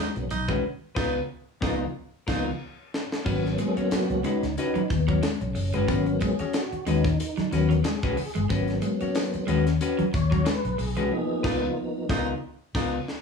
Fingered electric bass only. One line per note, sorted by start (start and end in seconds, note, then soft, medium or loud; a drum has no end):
0.17 0.29 B1 loud
0.31 0.49 B1 medium
0.49 0.61 C2 medium
0.97 1.20 C#2 loud
1.62 1.85 C#2 medium
2.28 2.51 C#2 medium
3.26 3.55 G#1 loud
3.77 muted fingered electric bass stroke soft
3.92 muted fingered electric bass stroke soft
4.10 4.23 C#2 medium
4.43 4.56 C#2 medium
4.76 muted fingered electric bass stroke soft
4.90 5.19 D#2 medium
5.41 5.54 B1 medium
5.56 5.72 F#1 loud
5.75 5.89 G1 loud
5.89 6.17 G#1 loud
6.40 muted fingered electric bass stroke soft
6.73 muted fingered electric bass stroke soft
6.87 7.15 D#2 medium
7.38 muted fingered electric bass stroke medium
7.52 7.81 D#2 medium
8.03 8.16 C#2 loud
8.36 8.49 G1 loud
8.50 8.79 G#1 loud
9.02 muted fingered electric bass stroke soft
9.35 muted fingered electric bass stroke soft
9.49 9.77 D#2 medium
10.00 muted fingered electric bass stroke medium
10.14 10.42 D#2 medium
10.65 10.77 B1 loud
10.79 10.98 B1 loud
10.98 11.10 C2 medium
11.44 11.67 C#2 loud
12.09 12.32 C#2 medium
12.75 12.98 C#2 loud